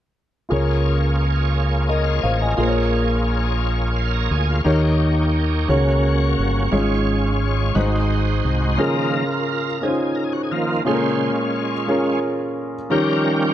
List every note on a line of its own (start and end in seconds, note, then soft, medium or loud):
0.49 2.20 C#2 medium
0.49 1.51 C#3 soft
0.49 2.55 A#3 soft
0.49 2.54 F4 soft
0.49 2.55 F4 soft
0.49 2.54 G#4 soft
0.49 2.55 G#4 soft
0.49 1.87 A#4 soft
0.49 2.55 C#5 soft
0.53 1.88 C#5 medium
1.89 2.22 A#4 soft
1.89 2.05 D#5 soft
1.89 2.22 D#5 soft
2.05 2.22 F5 soft
2.22 2.56 A1 medium
2.22 2.40 C5 soft
2.22 2.40 F5 soft
2.22 2.40 G#5 soft
2.39 2.74 D#5 soft
2.39 2.74 G#5 soft
2.39 2.73 A#5 soft
2.57 4.27 A#1 medium
2.57 3.59 A#2 medium
2.57 4.61 A#3 soft
2.57 4.61 F4 soft
2.57 4.61 G#4 soft
2.57 4.62 G#4 soft
2.57 4.62 A#4 soft
2.57 2.64 C5 soft
2.61 2.66 C5 soft
2.61 4.63 C#5 medium
2.68 4.65 C#5 medium
3.97 4.13 F5 soft
4.14 4.30 A#5 soft
4.31 4.63 D2 medium
4.31 4.48 G#5 medium
4.49 4.82 F5 soft
4.64 5.65 D#2 medium
4.64 5.65 D#3 medium
4.64 5.69 A#3 medium
4.64 5.69 D#4 medium
4.64 5.69 D#4 soft
4.64 5.69 G4 soft
4.64 5.68 A#4 soft
4.64 5.69 C#5 medium
4.64 5.68 C#5 medium
5.68 6.34 C#2 medium
5.68 6.69 C#3 soft
5.68 6.73 A#3 soft
5.68 6.70 C#4 medium
5.68 6.70 C#4 soft
5.68 6.72 F#4 soft
5.68 6.73 F#4 soft
5.68 6.73 A#4 soft
5.68 6.70 C#5 medium
5.68 6.72 C#5 medium
6.39 6.70 G1 medium
6.71 7.72 G#1 medium
6.71 7.72 G#2 medium
6.71 7.74 G#3 medium
6.71 7.75 C#4 medium
6.71 7.76 C#4 soft
6.71 7.76 F4 soft
6.71 7.75 G#4 medium
6.71 7.75 C#5 medium
6.71 7.77 C#5 medium
7.75 8.41 G#1 medium
7.75 8.75 G#2 soft
7.75 8.79 G#3 medium
7.75 8.79 D#4 soft
7.75 8.79 F#4 soft
7.75 8.78 G#4 soft
7.75 7.82 B4 soft
7.75 8.80 C5 medium
7.82 8.82 C5 medium
8.45 8.76 C2 medium
8.77 9.78 C#3 soft
8.77 9.24 D#3 soft
8.77 9.24 F3 soft
8.77 9.25 A#3 soft
8.77 9.64 C#4 medium
8.77 9.65 F4 medium
8.77 9.78 F4 medium
8.77 9.65 G#4 medium
8.77 9.66 A#4 medium
8.77 9.86 A#4 medium
9.82 10.68 C#4 soft
9.82 9.89 D#4 soft
9.82 10.69 G#4 soft
9.82 10.16 G#4 medium
9.82 10.69 C5 soft
9.89 10.71 F4 soft
10.15 10.24 A#4 medium
10.24 10.33 G#4 medium
10.33 10.42 F#4 medium
10.43 10.52 G#4 medium
10.51 10.82 D#3 soft
10.51 10.82 F3 soft
10.51 10.83 A#3 soft
10.51 10.83 F4 medium
10.85 11.85 A#2 soft
10.85 11.31 C#3 soft
10.85 12.20 G#3 soft
10.85 11.71 C#4 medium
10.85 12.20 C#4 soft
10.85 11.71 F4 medium
10.85 12.19 F4 medium
10.85 11.72 G#4 medium
10.85 10.93 A4 soft
10.85 11.32 C5 soft
10.93 11.75 A#4 medium
11.88 12.74 C#4 medium
11.88 12.74 F4 medium
11.88 12.74 G#4 medium
11.88 12.75 A#4 medium
12.90 13.54 D#3 soft
12.90 13.54 F3 soft
12.90 13.54 G3 soft
12.90 13.54 C#4 medium
12.90 13.54 D#4 medium
12.90 13.54 G4 medium
12.90 13.54 A#4 medium